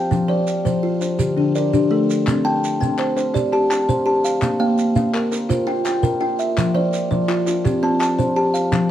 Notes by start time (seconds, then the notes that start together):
Already playing: G4 F5 G5
0.11 F3, shekere
0.28 F3 C5 D5
0.47 shekere
0.65 F3 C5, shekere
0.83 F4
1.01 C5, shekere
1.19 D3 G4, shekere
1.37 D3 D4
1.55 A#4 D5, shekere
1.73 D4 G4, shekere
1.91 A3 A4
2.10 shekere
2.27 C4, clap, shekere
2.45 C4 G5 A5
2.64 shekere
2.81 C4 G5 A5, shekere
2.99 C5, clap
3.17 C5, clap, shekere
3.34 G4 D5, clap, shekere
3.53 G4 A5, clap
3.70 A5, clap, shekere
3.89 C5, shekere
4.06 G4 A5
4.24 F5, shekere
4.42 A#3, clap, shekere
4.60 A#3 F5 G5
4.78 shekere
4.96 A#3 F5, shekere
5.14 A#4, clap
5.32 A#4, clap, shekere
5.49 F4 C5, clap, shekere
5.67 F4 G5, clap
5.85 G5, clap, shekere
6.03 A#4, shekere
6.21 F4 G5
6.39 E5, shekere
6.57 F3, clap, shekere
6.74 F3 C5 D5
6.93 shekere
7.11 F3 C5 D5, shekere
7.28 F4, clap
7.47 F4, clap, shekere
7.65 C4 G4, clap, shekere
7.83 C4 A5, clap
7.99 A5, clap, shekere
8.18 C5, shekere
8.36 G4 A5
8.54 F5, shekere
8.72 F3, clap, shekere